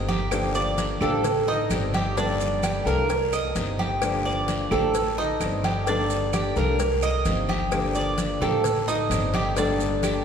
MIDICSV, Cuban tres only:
0, 0, Header, 1, 2, 480
1, 0, Start_track
1, 0, Key_signature, -2, "minor"
1, 0, Tempo, 462963
1, 326, Time_signature, 4, 2, 24, 8
1, 10624, End_track
2, 0, Start_track
2, 0, Title_t, "Cuban tres"
2, 0, Program_c, 0, 25
2, 88, Note_on_c, 0, 67, 79
2, 553, Note_off_c, 0, 67, 0
2, 571, Note_on_c, 0, 74, 82
2, 1035, Note_off_c, 0, 74, 0
2, 1054, Note_on_c, 0, 69, 80
2, 1516, Note_off_c, 0, 69, 0
2, 1535, Note_on_c, 0, 63, 94
2, 1996, Note_off_c, 0, 63, 0
2, 2015, Note_on_c, 0, 67, 82
2, 2244, Note_off_c, 0, 67, 0
2, 2254, Note_on_c, 0, 62, 83
2, 2716, Note_off_c, 0, 62, 0
2, 2733, Note_on_c, 0, 67, 66
2, 2963, Note_off_c, 0, 67, 0
2, 2974, Note_on_c, 0, 70, 78
2, 3436, Note_off_c, 0, 70, 0
2, 3452, Note_on_c, 0, 75, 80
2, 3915, Note_off_c, 0, 75, 0
2, 3932, Note_on_c, 0, 67, 80
2, 4395, Note_off_c, 0, 67, 0
2, 4412, Note_on_c, 0, 74, 77
2, 4875, Note_off_c, 0, 74, 0
2, 4889, Note_on_c, 0, 69, 78
2, 5353, Note_off_c, 0, 69, 0
2, 5372, Note_on_c, 0, 63, 89
2, 5834, Note_off_c, 0, 63, 0
2, 5851, Note_on_c, 0, 67, 77
2, 6081, Note_off_c, 0, 67, 0
2, 6094, Note_on_c, 0, 62, 83
2, 6555, Note_off_c, 0, 62, 0
2, 6569, Note_on_c, 0, 67, 70
2, 6800, Note_off_c, 0, 67, 0
2, 6809, Note_on_c, 0, 70, 81
2, 7272, Note_off_c, 0, 70, 0
2, 7287, Note_on_c, 0, 75, 83
2, 7751, Note_off_c, 0, 75, 0
2, 7768, Note_on_c, 0, 67, 83
2, 8231, Note_off_c, 0, 67, 0
2, 8246, Note_on_c, 0, 74, 81
2, 8710, Note_off_c, 0, 74, 0
2, 8727, Note_on_c, 0, 69, 80
2, 9190, Note_off_c, 0, 69, 0
2, 9205, Note_on_c, 0, 63, 87
2, 9669, Note_off_c, 0, 63, 0
2, 9688, Note_on_c, 0, 67, 82
2, 9918, Note_off_c, 0, 67, 0
2, 9929, Note_on_c, 0, 62, 84
2, 10391, Note_off_c, 0, 62, 0
2, 10407, Note_on_c, 0, 67, 67
2, 10624, Note_off_c, 0, 67, 0
2, 10624, End_track
0, 0, End_of_file